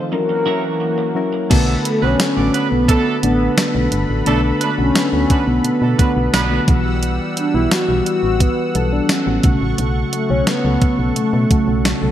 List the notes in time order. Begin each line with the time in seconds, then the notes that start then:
Already playing: D#3 F3 A3 C4 D#4 F4 A4
0.12 E3 F#3 A#3 C#4 E4 F#4 A#4, muted clean electric guitar stroke
0.29 muted clean electric guitar stroke
0.46 F#3 C#4 E4 A#4 C#5
0.64 muted clean electric guitar stroke
0.80 muted clean electric guitar stroke
0.98 muted clean electric guitar stroke
1.15 F#3 C#4 E4 A#4
1.33 muted clean electric guitar stroke
1.50 B1 D3 F#3 A3 B3 D4 F#4 A4 B4 B5, kick, closed hi-hat, crash
1.85 A3, closed hi-hat
2.02 B1 D3 F#3 A3 B3 C#4 D4 F#4 B4
2.20 snare, closed hi-hat, tambourine
2.36 A1 D3 A3 B3 D4 F#4 A4 D5
2.54 F#3 B3 D4 B4, closed hi-hat
2.69 B1 B3
2.89 F#3 A3 D4 A4, kick, closed hi-hat
3.21 A1 D3 A3 B3 D4, closed hi-hat
3.58 snare, closed hi-hat, tambourine
3.74 B1 D3 A3 B3 F#4
3.92 G1, closed hi-hat
4.10 A1
4.26 B1 D3 F#3 A3 B3 D4 A4, closed hi-hat
4.61 F#3 A3 B3 D4 B4, closed hi-hat
4.77 B1 D3 A3 B3 C#4 F#4
4.95 snare, closed hi-hat, tambourine
5.12 D2 D3 A3 B3 C#4 F#4
5.30 F#3 B3 D4 B4, kick, closed hi-hat
5.41 C#4
5.47 B1 B3
5.64 B2, closed hi-hat
5.82 B2 F#3 A3 D4 A4
5.98 D3 F#3 A3 B3 D4 F#4 B4, kick, closed hi-hat
6.16 B1
6.33 B1 F#3 B3 D4 B4, snare, closed hi-hat, tambourine
6.50 D3 A3 B3 F#4
6.68 B1 E3 G3 B3 F#4 F#5 E6, kick, closed hi-hat
7.03 closed hi-hat
7.37 D4, closed hi-hat
7.54 B1 E3 G3 B3 E4 F#4
7.71 F#4, snare, closed hi-hat, tambourine
7.88 B1 E3 G3 B3 F#4
8.06 F#4, closed hi-hat
8.23 A1
8.40 B3, kick, closed hi-hat
8.75 B1 E3 G3 B3 A4, closed hi-hat
8.93 D4
9.09 C#4, snare, closed hi-hat, tambourine
9.26 A1 E3 G3 B3 F#4
9.43 B1 C#3 F#3 A3 F#4 A4 C#6, kick, closed hi-hat
9.61 A1
9.78 B1, closed hi-hat
10.12 A3, closed hi-hat
10.29 B1 C#3 F#3 A3 C#4
10.47 B3, snare, closed hi-hat, tambourine
10.64 C#2 C#3 F#3 A3 A4
10.82 kick, closed hi-hat
10.99 B1
11.16 B2 A3, closed hi-hat
11.33 B2
11.50 C#3 F#3 A3 F#4, kick, closed hi-hat
11.68 B1
11.85 snare, closed hi-hat, tambourine
12.01 B1 C#3 F#3 A3 A4